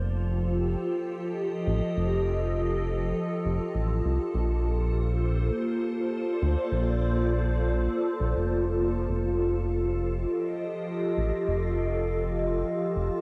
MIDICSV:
0, 0, Header, 1, 3, 480
1, 0, Start_track
1, 0, Tempo, 594059
1, 1590, Time_signature, 4, 2, 24, 8
1, 10674, End_track
2, 0, Start_track
2, 0, Title_t, "Ambient pad"
2, 0, Program_c, 0, 92
2, 0, Note_on_c, 0, 53, 77
2, 0, Note_on_c, 0, 65, 87
2, 0, Note_on_c, 0, 69, 69
2, 0, Note_on_c, 0, 72, 86
2, 77, Note_on_c, 0, 67, 83
2, 857, Note_on_c, 0, 75, 72
2, 1025, Note_off_c, 0, 72, 0
2, 3508, Note_off_c, 0, 75, 0
2, 3510, Note_off_c, 0, 53, 0
2, 3515, Note_on_c, 0, 58, 76
2, 3877, Note_on_c, 0, 72, 89
2, 4796, Note_on_c, 0, 74, 84
2, 5052, Note_off_c, 0, 67, 0
2, 7347, Note_on_c, 0, 53, 72
2, 7350, Note_off_c, 0, 74, 0
2, 7352, Note_off_c, 0, 58, 0
2, 7873, Note_on_c, 0, 67, 81
2, 8123, Note_on_c, 0, 75, 90
2, 8234, Note_off_c, 0, 72, 0
2, 10674, Note_off_c, 0, 53, 0
2, 10674, Note_off_c, 0, 65, 0
2, 10674, Note_off_c, 0, 67, 0
2, 10674, Note_off_c, 0, 69, 0
2, 10674, Note_off_c, 0, 75, 0
2, 10674, End_track
3, 0, Start_track
3, 0, Title_t, "Analog synth bass"
3, 0, Program_c, 1, 38
3, 0, Note_on_c, 1, 29, 95
3, 610, Note_off_c, 1, 29, 0
3, 1348, Note_on_c, 1, 33, 90
3, 1463, Note_off_c, 1, 33, 0
3, 1588, Note_on_c, 1, 29, 98
3, 2528, Note_off_c, 1, 29, 0
3, 2791, Note_on_c, 1, 29, 93
3, 2904, Note_off_c, 1, 29, 0
3, 3029, Note_on_c, 1, 33, 91
3, 3243, Note_off_c, 1, 33, 0
3, 3272, Note_on_c, 1, 36, 78
3, 3385, Note_off_c, 1, 36, 0
3, 3510, Note_on_c, 1, 34, 99
3, 4449, Note_off_c, 1, 34, 0
3, 5189, Note_on_c, 1, 38, 90
3, 5304, Note_off_c, 1, 38, 0
3, 5428, Note_on_c, 1, 34, 99
3, 6368, Note_off_c, 1, 34, 0
3, 6627, Note_on_c, 1, 34, 95
3, 6743, Note_off_c, 1, 34, 0
3, 6758, Note_on_c, 1, 29, 79
3, 7328, Note_off_c, 1, 29, 0
3, 7345, Note_on_c, 1, 29, 96
3, 8286, Note_off_c, 1, 29, 0
3, 9029, Note_on_c, 1, 33, 87
3, 9144, Note_off_c, 1, 33, 0
3, 9272, Note_on_c, 1, 29, 100
3, 10210, Note_off_c, 1, 29, 0
3, 10470, Note_on_c, 1, 29, 90
3, 10584, Note_off_c, 1, 29, 0
3, 10674, End_track
0, 0, End_of_file